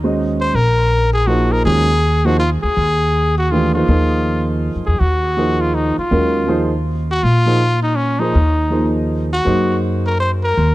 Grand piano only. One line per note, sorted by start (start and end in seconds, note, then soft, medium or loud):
0.04 0.52 G#3 medium
0.04 0.52 C#4 medium
0.04 0.52 F#4 soft
0.04 0.52 C5 soft
0.04 0.52 D#5 medium
1.27 1.84 F3 medium
1.27 1.84 A#3 soft
1.27 1.85 D#4 soft
1.27 1.85 G#4 soft
1.27 1.85 C5 medium
1.65 1.87 D#3 soft
1.65 1.87 G#3 soft
1.65 1.87 C#4 soft
1.65 1.87 F#4 soft
1.65 1.87 A#4 medium
2.25 2.38 F3 medium
2.25 2.38 A#3 medium
2.25 2.39 D#4 medium
2.25 2.39 G#4 soft
2.25 2.39 C5 medium
3.52 3.73 E3 soft
3.52 3.73 A3 soft
3.52 3.73 D4 soft
3.52 3.73 G4 soft
3.52 3.74 B4 medium
3.75 3.87 F3 soft
3.75 3.88 A#3 soft
3.75 3.88 D#4 soft
3.75 3.88 G#4 soft
3.75 3.89 C5 soft
3.89 4.92 F3 medium
3.89 4.92 A#3 soft
3.89 4.92 D#4 medium
3.89 4.93 G#4 medium
3.89 4.93 C5 medium
5.37 5.93 F3 soft
5.37 5.93 A#3 soft
5.37 5.94 D#4 soft
5.37 5.93 G#4 soft
5.37 5.94 C5 medium
6.11 6.47 D#3 medium
6.11 6.48 F#3 soft
6.11 6.48 G#3 soft
6.11 6.47 C#4 medium
6.11 6.48 A#4 medium
6.47 6.69 F3 medium
6.47 6.70 A#3 soft
6.47 6.70 D#4 medium
6.47 6.70 G#4 medium
6.47 6.70 C5 medium
7.46 7.59 F3 medium
7.46 7.59 A#3 medium
7.46 7.59 D#4 medium
7.46 7.59 G#4 soft
7.46 7.59 C5 medium
8.19 8.32 F3 medium
8.19 8.33 A#3 soft
8.19 8.33 D#4 medium
8.19 8.33 G#4 medium
8.19 8.34 C5 medium
8.70 9.27 F3 soft
8.70 9.27 A#3 soft
8.70 9.27 D#4 soft
8.70 9.28 G#4 soft
8.70 9.28 C5 medium
9.45 10.49 F#3 medium
9.45 10.49 A#3 medium
9.45 10.49 D#4 medium
9.45 10.49 G#4 soft
9.45 10.49 C5 medium